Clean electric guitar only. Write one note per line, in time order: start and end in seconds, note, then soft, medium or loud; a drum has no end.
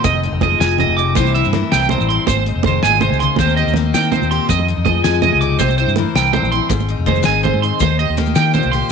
0.04 0.20 D#5 medium
0.43 0.58 D#5 medium
0.60 0.76 G#5 medium
0.79 0.95 D#5 medium
0.97 1.12 D6 medium
1.16 1.32 C5 medium
1.34 1.50 E5 medium
1.72 1.87 G5 medium
1.90 2.06 C5 medium
2.09 2.24 C6 medium
2.27 2.43 C5 medium
2.66 2.81 C5 medium
2.83 2.98 G#5 medium
3.01 3.17 C5 medium
3.20 3.35 C6 medium
3.40 3.54 C5 medium
3.56 3.72 D#5 medium
3.94 4.09 G5 medium
4.12 4.27 C5 medium
4.31 4.46 C6 medium
4.50 4.65 D#5 loud
4.85 5.00 D#5 medium
5.04 5.19 G#5 medium
5.22 5.38 D#5 medium
5.41 5.56 D6 medium
5.59 5.74 C5 medium
5.78 5.93 C5 medium
6.16 6.31 G5 medium
6.33 6.48 C5 medium
6.52 6.67 C6 medium
6.69 muted clean electric guitar stroke medium
7.07 7.22 C5 medium
7.25 7.41 G#5 medium
7.43 7.59 C5 medium
7.62 7.78 C6 medium
7.81 7.96 C5 medium
7.99 8.14 D#5 medium
8.36 8.51 G5 medium
8.54 8.69 C5 medium
8.72 8.87 C6 medium